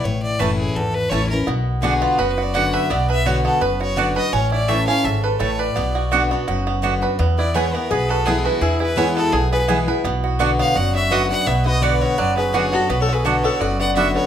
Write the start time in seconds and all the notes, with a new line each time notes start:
0.04 A1 A2 C#5
0.23 D5
0.39 F#1 E3 A3 C#4 E4 B4 C#5 A5
0.59 G#4
0.75 G#1 E2 A4
0.94 B4
1.10 A1 E3 A3 C#4 E4 C#5 A5
1.30 C#4 E4 A#4
1.47 B1 B2 B3
1.82 D3 B3 D4 F#4 G#4 D5 F#5
2.02 B3 F4
2.18 F#1 F#2 F#4 B4
2.31 B4
2.38 F#4
2.43 D5
2.54 D3 B3 D4 F#4 D5 F#5
2.73 B4 E5
2.90 B1 B2 B3 D5
3.10 B4 E5
3.25 D3 B3 D4 F#4 C#5 D5 F#5
3.45 B3 A4
3.61 F#1 F#2 B4
3.81 F#4 C#5
3.96 D3 B3 D4 F#4 D5 F#5
4.16 D4 F#4 B4 D#5
4.33 A1 A2 C#4 C#5
4.52 E4 D5
4.68 E3 A3 C#4 E4 A4 C#5 E5 A5
4.87 C#4 E4 F5
5.04 G#1 G#2 A4 E5
5.24 A4 B4
5.39 A1 A2 A3 E4 A4 C#5 A5
5.59 B4 D5
5.76 B1 B2 B3
5.95 F#4
6.11 D3 B3 D4 F#4 D5 F#5
6.31 B3 D4 F#4
6.48 F#1 F#2 F#4
6.67 B3
6.82 D3 B3 D4 F#4 D5 F#5
7.02 D4 F#4 B4
7.19 E2 B3
7.38 E4 B4 D5
7.54 E3 G#3 B3 E4 G#4 B4 C#5 G#5
7.74 B3 E4 F#4 A#4
7.90 B1 B2 G#4 B4
8.10 F#4 A4 B4
8.25 E3 G#3 B3 E4 G#4 B4 G#5
8.44 D4 F#4 B4
8.61 E2 E4 G#4
8.80 E4 G#4 B4
8.96 E3 G#3 B3 E4 G#4 B4 C#5 G#5
9.17 B3 F#4 A4
9.32 B1 B2 E4 G#4
9.52 B3 G#4 B4
9.68 E3 G#3 B3 E4 G#4 B4 G#5
9.88 B3 E4 B4
10.04 B1 B2 B3
10.24 F#4
10.39 D3 B3 D4 F#4 D5 F#5
10.59 B3 C#5 F5
10.75 F#1 F#2 F#4 D5 F#5
10.95 B3 C#5 E5
11.10 D3 B3 D4 F#4 B4 D5 D#5 F#5
11.29 B3 D4 F#4 D5 F#5
11.46 B1 B2 B3 B4 E5
11.66 F#4 B4 D#5
11.81 D3 B3 D4 F#4 B4 D5 F#5
12.01 F#4 A4 C#5
12.18 F#1 F#2 F#3 B4 D5
12.37 B3 G#4 B4
12.53 D3 B3 D4 F#4 G#4 D5 F#5
12.72 B3 D4 F#4 A4
12.89 B1 B2 B3 F#4 B4
13.01 A4 C#5
13.09 F#4
13.13 G#4 B4
13.25 D3 B3 D4 F#4 A4 D5 F#5
13.44 B3 D4 F#4 A4 C#5
13.60 F#1 F#2 F#4 B4 D5
13.80 B3 D5 F#5
13.96 D3 B3 D4 F#4 B4 D5 E5 F#5
14.16 B3 A4 C#5